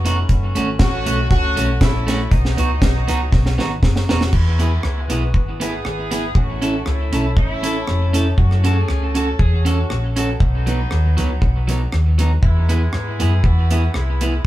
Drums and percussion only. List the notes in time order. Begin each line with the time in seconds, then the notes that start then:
0.06 closed hi-hat
0.29 kick, closed hi-hat
0.56 closed hi-hat
0.79 kick, snare, closed hi-hat
1.06 closed hi-hat
1.31 kick, closed hi-hat
1.57 closed hi-hat
1.81 kick, snare, closed hi-hat
2.08 snare, closed hi-hat
2.31 kick, closed hi-hat
2.45 snare
2.58 closed hi-hat
2.82 kick, snare, closed hi-hat
3.08 closed hi-hat
3.32 kick, snare
3.46 snare
3.59 snare
3.83 kick, snare
3.96 snare
4.09 snare
4.21 snare
4.33 kick, crash
4.60 closed hi-hat
4.83 cross-stick
5.10 closed hi-hat
5.34 kick
5.61 closed hi-hat
5.85 cross-stick
6.11 closed hi-hat
6.35 kick
6.62 closed hi-hat
6.86 cross-stick
7.13 closed hi-hat
7.37 kick
7.64 closed hi-hat
7.87 cross-stick
8.14 closed hi-hat
8.38 kick
8.51 cross-stick
8.65 closed hi-hat
8.88 cross-stick
9.15 closed hi-hat
9.39 kick
9.66 closed hi-hat
9.90 cross-stick
10.17 closed hi-hat
10.40 kick
10.67 closed hi-hat
10.91 cross-stick
11.18 closed hi-hat
11.42 kick
11.69 closed hi-hat
11.92 cross-stick
12.19 closed hi-hat
12.43 kick
12.69 closed hi-hat
12.93 cross-stick
13.20 closed hi-hat
13.44 kick
13.71 closed hi-hat
13.94 cross-stick
14.21 closed hi-hat